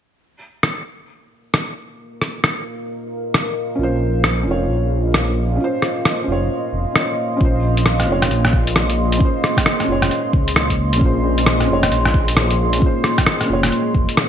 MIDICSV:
0, 0, Header, 1, 5, 480
1, 0, Start_track
1, 0, Tempo, 451128
1, 200, Time_signature, 4, 2, 24, 8
1, 15201, End_track
2, 0, Start_track
2, 0, Title_t, "Ambient pad"
2, 0, Program_c, 0, 92
2, 193, Note_on_c, 0, 58, 81
2, 309, Note_on_c, 0, 70, 72
2, 389, Note_on_c, 0, 77, 84
2, 512, Note_on_c, 0, 75, 76
2, 534, Note_on_c, 0, 84, 86
2, 7932, Note_on_c, 0, 68, 88
2, 9133, Note_off_c, 0, 70, 0
2, 15201, Note_off_c, 0, 58, 0
2, 15201, Note_off_c, 0, 68, 0
2, 15201, Note_off_c, 0, 75, 0
2, 15201, Note_off_c, 0, 77, 0
2, 15201, Note_off_c, 0, 84, 0
2, 15201, End_track
3, 0, Start_track
3, 0, Title_t, "Felt piano"
3, 0, Program_c, 1, 0
3, 380, Control_c, 1, 64, 127
3, 3993, Note_on_c, 1, 61, 85
3, 4039, Note_on_c, 1, 65, 78
3, 4079, Note_on_c, 1, 72, 95
3, 4697, Note_off_c, 1, 61, 0
3, 4713, Note_on_c, 1, 61, 78
3, 4737, Note_off_c, 1, 65, 0
3, 4754, Note_on_c, 1, 65, 73
3, 4757, Note_off_c, 1, 72, 0
3, 4798, Note_on_c, 1, 73, 89
3, 5903, Note_off_c, 1, 61, 0
3, 5919, Note_on_c, 1, 61, 86
3, 5935, Note_off_c, 1, 65, 0
3, 5957, Note_off_c, 1, 73, 0
3, 5961, Note_on_c, 1, 65, 81
3, 6001, Note_on_c, 1, 72, 97
3, 6622, Note_off_c, 1, 61, 0
3, 6638, Note_on_c, 1, 61, 82
3, 6659, Note_off_c, 1, 65, 0
3, 6679, Note_off_c, 1, 72, 0
3, 6681, Note_on_c, 1, 65, 72
3, 6724, Note_on_c, 1, 73, 89
3, 7820, Note_off_c, 1, 61, 0
3, 7836, Note_on_c, 1, 61, 87
3, 7859, Note_off_c, 1, 65, 0
3, 7879, Note_on_c, 1, 65, 80
3, 7880, Note_off_c, 1, 73, 0
3, 7893, Control_c, 1, 64, 0
3, 7922, Note_on_c, 1, 72, 97
3, 8057, Control_c, 1, 64, 127
3, 8540, Note_off_c, 1, 61, 0
3, 8556, Note_on_c, 1, 61, 79
3, 8577, Note_off_c, 1, 65, 0
3, 8597, Note_on_c, 1, 65, 74
3, 8599, Note_off_c, 1, 72, 0
3, 8640, Note_on_c, 1, 73, 90
3, 9743, Note_off_c, 1, 61, 0
3, 9759, Note_on_c, 1, 61, 88
3, 9776, Note_off_c, 1, 65, 0
3, 9798, Note_off_c, 1, 73, 0
3, 9802, Note_on_c, 1, 65, 82
3, 9841, Note_on_c, 1, 72, 98
3, 10455, Note_off_c, 1, 61, 0
3, 10471, Note_on_c, 1, 61, 80
3, 10498, Note_off_c, 1, 65, 0
3, 10514, Note_on_c, 1, 65, 75
3, 10519, Note_off_c, 1, 72, 0
3, 10556, Note_on_c, 1, 73, 92
3, 11660, Note_off_c, 1, 61, 0
3, 11675, Note_on_c, 1, 61, 89
3, 11695, Note_off_c, 1, 65, 0
3, 11716, Note_off_c, 1, 73, 0
3, 11719, Note_on_c, 1, 65, 80
3, 11760, Note_on_c, 1, 72, 99
3, 12381, Note_off_c, 1, 61, 0
3, 12397, Note_on_c, 1, 61, 83
3, 12417, Note_off_c, 1, 65, 0
3, 12438, Note_off_c, 1, 72, 0
3, 12439, Note_on_c, 1, 65, 76
3, 12482, Note_on_c, 1, 73, 93
3, 13581, Note_off_c, 1, 61, 0
3, 13597, Note_on_c, 1, 61, 91
3, 13617, Note_off_c, 1, 65, 0
3, 13639, Note_off_c, 1, 73, 0
3, 13641, Note_on_c, 1, 65, 82
3, 13683, Note_on_c, 1, 72, 99
3, 14299, Note_off_c, 1, 61, 0
3, 14315, Note_on_c, 1, 61, 82
3, 14339, Note_off_c, 1, 65, 0
3, 14357, Note_on_c, 1, 65, 74
3, 14359, Note_off_c, 1, 72, 0
3, 14400, Note_on_c, 1, 73, 91
3, 15176, Note_off_c, 1, 61, 0
3, 15197, Note_off_c, 1, 65, 0
3, 15201, Note_off_c, 1, 73, 0
3, 15201, End_track
4, 0, Start_track
4, 0, Title_t, "Detuned saw bass"
4, 0, Program_c, 2, 39
4, 4032, Note_on_c, 2, 34, 91
4, 4744, Note_off_c, 2, 34, 0
4, 4755, Note_on_c, 2, 29, 85
4, 4983, Note_off_c, 2, 29, 0
4, 4991, Note_on_c, 2, 34, 88
4, 5944, Note_off_c, 2, 34, 0
4, 6680, Note_on_c, 2, 29, 87
4, 6905, Note_off_c, 2, 29, 0
4, 7157, Note_on_c, 2, 29, 93
4, 7295, Note_off_c, 2, 29, 0
4, 7877, Note_on_c, 2, 34, 93
4, 8587, Note_off_c, 2, 34, 0
4, 8594, Note_on_c, 2, 29, 84
4, 8822, Note_off_c, 2, 29, 0
4, 8836, Note_on_c, 2, 34, 89
4, 9786, Note_off_c, 2, 34, 0
4, 10513, Note_on_c, 2, 29, 88
4, 10742, Note_off_c, 2, 29, 0
4, 10992, Note_on_c, 2, 37, 84
4, 11625, Note_on_c, 2, 34, 97
4, 11641, Note_off_c, 2, 37, 0
4, 11708, Note_off_c, 2, 34, 0
4, 11715, Note_on_c, 2, 34, 94
4, 12426, Note_off_c, 2, 34, 0
4, 12438, Note_on_c, 2, 29, 89
4, 12664, Note_off_c, 2, 29, 0
4, 12676, Note_on_c, 2, 34, 89
4, 13627, Note_off_c, 2, 34, 0
4, 14358, Note_on_c, 2, 29, 88
4, 14584, Note_off_c, 2, 29, 0
4, 14837, Note_on_c, 2, 29, 93
4, 14975, Note_off_c, 2, 29, 0
4, 15201, End_track
5, 0, Start_track
5, 0, Title_t, "Drums"
5, 673, Note_on_c, 9, 37, 93
5, 779, Note_off_c, 9, 37, 0
5, 1636, Note_on_c, 9, 37, 94
5, 1742, Note_off_c, 9, 37, 0
5, 2357, Note_on_c, 9, 37, 56
5, 2463, Note_off_c, 9, 37, 0
5, 2594, Note_on_c, 9, 37, 98
5, 2700, Note_off_c, 9, 37, 0
5, 3557, Note_on_c, 9, 37, 100
5, 3664, Note_off_c, 9, 37, 0
5, 4510, Note_on_c, 9, 37, 98
5, 4617, Note_off_c, 9, 37, 0
5, 5472, Note_on_c, 9, 37, 104
5, 5578, Note_off_c, 9, 37, 0
5, 6196, Note_on_c, 9, 37, 58
5, 6302, Note_off_c, 9, 37, 0
5, 6442, Note_on_c, 9, 37, 100
5, 6548, Note_off_c, 9, 37, 0
5, 7400, Note_on_c, 9, 37, 103
5, 7507, Note_off_c, 9, 37, 0
5, 7880, Note_on_c, 9, 36, 107
5, 7986, Note_off_c, 9, 36, 0
5, 8271, Note_on_c, 9, 42, 54
5, 8360, Note_on_c, 9, 37, 99
5, 8377, Note_off_c, 9, 42, 0
5, 8466, Note_off_c, 9, 37, 0
5, 8509, Note_on_c, 9, 37, 35
5, 8509, Note_on_c, 9, 42, 31
5, 8615, Note_off_c, 9, 37, 0
5, 8615, Note_off_c, 9, 42, 0
5, 8750, Note_on_c, 9, 37, 63
5, 8750, Note_on_c, 9, 42, 54
5, 8841, Note_off_c, 9, 42, 0
5, 8841, Note_on_c, 9, 42, 31
5, 8856, Note_off_c, 9, 37, 0
5, 8947, Note_off_c, 9, 42, 0
5, 8987, Note_on_c, 9, 37, 65
5, 9075, Note_on_c, 9, 36, 98
5, 9094, Note_off_c, 9, 37, 0
5, 9181, Note_off_c, 9, 36, 0
5, 9227, Note_on_c, 9, 42, 52
5, 9318, Note_on_c, 9, 37, 97
5, 9334, Note_off_c, 9, 42, 0
5, 9424, Note_off_c, 9, 37, 0
5, 9465, Note_on_c, 9, 42, 45
5, 9572, Note_off_c, 9, 42, 0
5, 9707, Note_on_c, 9, 42, 53
5, 9793, Note_on_c, 9, 36, 113
5, 9814, Note_off_c, 9, 42, 0
5, 9899, Note_off_c, 9, 36, 0
5, 10042, Note_on_c, 9, 37, 60
5, 10149, Note_off_c, 9, 37, 0
5, 10183, Note_on_c, 9, 36, 59
5, 10191, Note_on_c, 9, 37, 59
5, 10191, Note_on_c, 9, 42, 55
5, 10278, Note_off_c, 9, 37, 0
5, 10278, Note_on_c, 9, 37, 102
5, 10289, Note_off_c, 9, 36, 0
5, 10297, Note_off_c, 9, 42, 0
5, 10384, Note_off_c, 9, 37, 0
5, 10428, Note_on_c, 9, 37, 34
5, 10428, Note_on_c, 9, 42, 30
5, 10535, Note_off_c, 9, 37, 0
5, 10535, Note_off_c, 9, 42, 0
5, 10664, Note_on_c, 9, 37, 61
5, 10664, Note_on_c, 9, 42, 54
5, 10758, Note_off_c, 9, 42, 0
5, 10758, Note_on_c, 9, 42, 31
5, 10771, Note_off_c, 9, 37, 0
5, 10865, Note_off_c, 9, 42, 0
5, 10994, Note_on_c, 9, 36, 104
5, 11100, Note_off_c, 9, 36, 0
5, 11148, Note_on_c, 9, 42, 55
5, 11237, Note_on_c, 9, 37, 104
5, 11255, Note_off_c, 9, 42, 0
5, 11343, Note_off_c, 9, 37, 0
5, 11383, Note_on_c, 9, 36, 59
5, 11388, Note_on_c, 9, 42, 45
5, 11490, Note_off_c, 9, 36, 0
5, 11494, Note_off_c, 9, 42, 0
5, 11628, Note_on_c, 9, 42, 54
5, 11715, Note_on_c, 9, 36, 115
5, 11735, Note_off_c, 9, 42, 0
5, 11821, Note_off_c, 9, 36, 0
5, 12107, Note_on_c, 9, 42, 55
5, 12198, Note_on_c, 9, 37, 104
5, 12213, Note_off_c, 9, 42, 0
5, 12305, Note_off_c, 9, 37, 0
5, 12347, Note_on_c, 9, 37, 35
5, 12347, Note_on_c, 9, 42, 30
5, 12453, Note_off_c, 9, 37, 0
5, 12453, Note_off_c, 9, 42, 0
5, 12588, Note_on_c, 9, 37, 60
5, 12588, Note_on_c, 9, 42, 52
5, 12680, Note_off_c, 9, 42, 0
5, 12680, Note_on_c, 9, 42, 30
5, 12695, Note_off_c, 9, 37, 0
5, 12787, Note_off_c, 9, 42, 0
5, 12826, Note_on_c, 9, 37, 61
5, 12918, Note_on_c, 9, 36, 107
5, 12933, Note_off_c, 9, 37, 0
5, 13024, Note_off_c, 9, 36, 0
5, 13068, Note_on_c, 9, 42, 55
5, 13158, Note_on_c, 9, 37, 104
5, 13174, Note_off_c, 9, 42, 0
5, 13264, Note_off_c, 9, 37, 0
5, 13306, Note_on_c, 9, 42, 44
5, 13412, Note_off_c, 9, 42, 0
5, 13545, Note_on_c, 9, 42, 54
5, 13639, Note_on_c, 9, 36, 113
5, 13651, Note_off_c, 9, 42, 0
5, 13745, Note_off_c, 9, 36, 0
5, 13874, Note_on_c, 9, 37, 61
5, 13980, Note_off_c, 9, 37, 0
5, 14025, Note_on_c, 9, 37, 56
5, 14025, Note_on_c, 9, 42, 53
5, 14027, Note_on_c, 9, 36, 60
5, 14114, Note_off_c, 9, 37, 0
5, 14114, Note_on_c, 9, 37, 104
5, 14131, Note_off_c, 9, 42, 0
5, 14133, Note_off_c, 9, 36, 0
5, 14220, Note_off_c, 9, 37, 0
5, 14265, Note_on_c, 9, 37, 33
5, 14265, Note_on_c, 9, 42, 30
5, 14372, Note_off_c, 9, 37, 0
5, 14372, Note_off_c, 9, 42, 0
5, 14506, Note_on_c, 9, 37, 58
5, 14506, Note_on_c, 9, 42, 51
5, 14600, Note_off_c, 9, 42, 0
5, 14600, Note_on_c, 9, 42, 29
5, 14613, Note_off_c, 9, 37, 0
5, 14707, Note_off_c, 9, 42, 0
5, 14837, Note_on_c, 9, 36, 104
5, 14944, Note_off_c, 9, 36, 0
5, 14989, Note_on_c, 9, 42, 51
5, 15080, Note_on_c, 9, 37, 104
5, 15096, Note_off_c, 9, 42, 0
5, 15186, Note_off_c, 9, 37, 0
5, 15201, End_track
0, 0, End_of_file